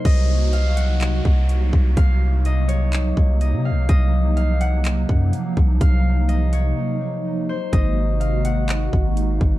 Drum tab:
HH |x-xxx-x-|x-xxx-x-|x-xxx-x-|x-xx----|
CP |----x---|----x---|----x---|--------|
BD |o----o-o|o----o--|o----o-o|o-------|

HH |x-xxx-x-|
CP |----x---|
BD |o----o-o|